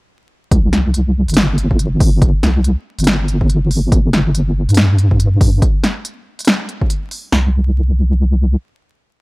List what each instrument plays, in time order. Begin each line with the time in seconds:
0.51 wobble bass C2, kick, closed hi-hat
0.73 snare, closed hi-hat
0.94 closed hi-hat
1.28 wobble bass G1, closed hi-hat
1.34 snare, closed hi-hat
1.37 closed hi-hat
1.58 closed hi-hat
1.71 kick
1.79 closed hi-hat
2.00 kick, open hi-hat
2.22 kick, closed hi-hat
2.43 wobble bass C2, snare, closed hi-hat
2.64 closed hi-hat
2.98 wobble bass G1, closed hi-hat
3.04 snare, closed hi-hat
3.07 closed hi-hat
3.28 closed hi-hat
3.41 kick
3.50 closed hi-hat
3.71 open hi-hat
3.92 wobble bass G1, kick, closed hi-hat
4.13 snare, closed hi-hat
4.35 closed hi-hat
4.69 wobble bass G2, closed hi-hat
4.74 snare, closed hi-hat
4.77 closed hi-hat
4.98 closed hi-hat
5.11 kick
5.20 closed hi-hat
5.41 kick, open hi-hat
5.62 kick, closed hi-hat
5.84 snare, closed hi-hat
6.05 closed hi-hat
6.39 closed hi-hat
6.45 snare, closed hi-hat
6.47 closed hi-hat
6.69 closed hi-hat
6.81 kick
6.90 closed hi-hat
7.11 open hi-hat
7.32 wobble bass C2, snare